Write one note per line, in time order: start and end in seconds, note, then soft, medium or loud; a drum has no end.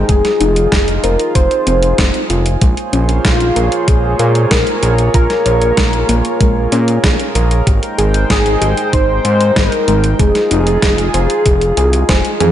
0.00 2.58 D#4 medium
0.09 0.22 F1 medium
0.09 0.39 G#3 loud
0.09 2.59 F4 medium
0.09 1.05 G#4 loud
0.09 7.63 G#4 medium
0.09 kick loud
0.09 closed hi-hat medium
0.25 snare soft
0.25 closed hi-hat soft
0.40 0.67 F1 loud
0.40 0.64 D#4 medium
0.40 closed hi-hat medium
0.56 closed hi-hat soft
0.72 0.99 F1 medium
0.72 0.86 G#4 medium
0.72 kick loud
0.72 snare loud
0.72 closed hi-hat medium
0.88 closed hi-hat soft
1.03 1.17 F1 medium
1.03 1.34 A#4 loud
1.03 1.27 C5 medium
1.03 closed hi-hat medium
1.19 closed hi-hat medium
1.35 1.49 F1 medium
1.35 1.49 G#4 medium
1.35 2.26 C5 loud
1.35 kick loud
1.35 closed hi-hat medium
1.51 closed hi-hat soft
1.67 1.94 F1 medium
1.67 1.97 C4 medium
1.67 closed hi-hat medium
1.83 closed hi-hat medium
1.98 2.12 F1 medium
1.98 2.22 C4 medium
1.98 kick loud
1.98 snare loud
1.98 closed hi-hat medium
2.14 closed hi-hat soft
2.30 2.57 F1 loud
2.30 2.60 F4 medium
2.30 closed hi-hat medium
2.46 closed hi-hat medium
2.61 2.75 A#1 medium
2.61 2.92 G#3 loud
2.61 7.63 A#3 medium
2.61 7.63 F4 medium
2.61 5.12 C5 medium
2.61 7.63 C#5 medium
2.61 kick loud
2.61 closed hi-hat medium
2.77 closed hi-hat soft
2.93 3.20 A#1 loud
2.93 3.17 C#4 medium
2.93 closed hi-hat medium
3.09 closed hi-hat medium
3.25 3.51 A#1 medium
3.25 3.89 F4 medium
3.25 3.39 G#4 medium
3.25 kick loud
3.25 snare loud
3.25 closed hi-hat medium
3.40 closed hi-hat soft
3.56 3.70 A#1 medium
3.56 3.80 A#4 medium
3.56 closed hi-hat medium
3.72 closed hi-hat medium
3.88 4.15 A#1 medium
3.88 4.52 G#4 loud
3.88 4.02 G#4 medium
3.88 kick loud
3.88 closed hi-hat medium
4.19 4.46 A#2 loud
4.19 4.49 A#4 loud
4.19 closed hi-hat medium
4.35 closed hi-hat soft
4.51 4.64 A#1 medium
4.51 4.74 G#3 medium
4.51 5.14 A#4 loud
4.51 kick loud
4.51 snare loud
4.51 closed hi-hat medium
4.67 closed hi-hat soft
4.83 5.09 A#1 loud
4.83 5.06 G#4 medium
4.83 closed hi-hat medium
4.98 closed hi-hat soft
5.14 5.28 A#1 medium
5.14 5.28 F4 loud
5.14 7.00 A#4 loud
5.14 10.16 A#4 medium
5.14 kick loud
5.14 closed hi-hat medium
5.30 snare soft
5.30 closed hi-hat soft
5.46 5.72 A#1 loud
5.46 5.60 C#5 medium
5.46 closed hi-hat medium
5.62 closed hi-hat soft
5.77 6.04 A#1 medium
5.77 5.91 G#3 medium
5.77 kick loud
5.77 snare loud
5.77 closed hi-hat medium
5.93 closed hi-hat soft
6.09 6.22 A#1 medium
6.09 6.23 A#3 medium
6.09 closed hi-hat medium
6.25 closed hi-hat soft
6.41 6.67 A#1 medium
6.41 6.70 G#3 loud
6.41 kick loud
6.41 closed hi-hat medium
6.72 6.99 A#2 loud
6.72 6.96 C#4 medium
6.72 closed hi-hat medium
6.88 closed hi-hat soft
7.04 7.17 A#1 medium
7.04 7.18 G#4 medium
7.04 kick loud
7.04 snare loud
7.04 closed hi-hat medium
7.20 closed hi-hat soft
7.35 7.62 A#1 loud
7.35 7.59 A#4 medium
7.35 closed hi-hat medium
7.51 closed hi-hat medium
7.67 7.80 G#1 loud
7.67 10.17 G#3 medium
7.67 12.52 D#4 medium
7.67 7.81 G4 medium
7.67 10.17 C5 medium
7.67 10.17 G5 medium
7.67 kick loud
7.67 closed hi-hat medium
7.83 closed hi-hat soft
7.98 8.25 G#1 loud
7.98 8.28 G#4 loud
7.98 closed hi-hat medium
8.14 closed hi-hat medium
8.30 8.57 G#1 medium
8.30 8.53 G3 medium
8.30 8.89 G#4 loud
8.30 kick loud
8.30 snare loud
8.30 closed hi-hat medium
8.46 closed hi-hat soft
8.61 8.75 G#1 medium
8.61 8.85 G4 medium
8.61 closed hi-hat medium
8.77 closed hi-hat medium
8.93 9.20 G#1 medium
8.93 9.07 D#4 loud
8.93 9.58 C5 loud
8.93 kick loud
8.93 closed hi-hat medium
9.25 9.51 G#2 loud
9.25 9.39 C5 medium
9.25 closed hi-hat medium
9.41 closed hi-hat medium
9.56 9.70 G#1 medium
9.56 9.70 G3 medium
9.56 10.21 A#4 loud
9.56 kick loud
9.56 snare loud
9.56 closed hi-hat medium
9.72 closed hi-hat soft
9.88 10.15 G#1 loud
9.88 10.02 G#3 medium
9.88 closed hi-hat medium
10.04 closed hi-hat soft
10.19 10.33 F1 medium
10.19 10.49 G#3 loud
10.19 12.52 F4 medium
10.19 12.09 G#4 loud
10.19 12.52 G#4 loud
10.19 kick loud
10.19 closed hi-hat medium
10.35 snare soft
10.35 closed hi-hat soft
10.51 10.78 F1 loud
10.51 10.74 D#4 medium
10.51 closed hi-hat medium
10.67 closed hi-hat medium
10.82 11.09 F1 medium
10.82 10.97 G#4 medium
10.82 kick loud
10.82 snare loud
10.82 closed hi-hat medium
10.98 closed hi-hat soft
11.14 11.28 F1 medium
11.14 11.38 C5 medium
11.14 closed hi-hat medium
11.30 closed hi-hat medium
11.46 11.73 F1 loud
11.46 11.60 G#4 medium
11.46 kick loud
11.46 closed hi-hat medium
11.61 closed hi-hat soft
11.77 12.04 C2 medium
11.77 12.01 G#4 loud
11.77 closed hi-hat medium
11.93 closed hi-hat medium
12.09 12.22 F1 medium
12.09 12.52 G#4 loud
12.09 12.23 C5 loud
12.09 kick loud
12.09 snare loud
12.09 closed hi-hat medium
12.25 closed hi-hat soft
12.40 12.52 F2 medium
12.40 12.52 G#4 medium
12.40 closed hi-hat medium
12.40 high tom medium